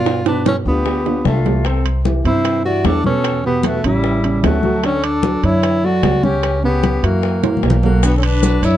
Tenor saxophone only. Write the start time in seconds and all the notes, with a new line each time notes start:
Already playing: F4
0.27 D4
0.48 C#4
0.67 B3
1.27 A3
1.67 C4
2.27 E4
2.65 F#4
2.86 D4
3.06 C#4
3.46 B3
3.66 A3
3.86 G3
4.45 A3
4.85 C#4
5.04 D4
5.45 E4
5.85 F#4
6.24 C#4
6.64 B3
7.05 A#3
7.85 A#3
8.05 B3
8.17 C#4
8.24 D4
8.65 E4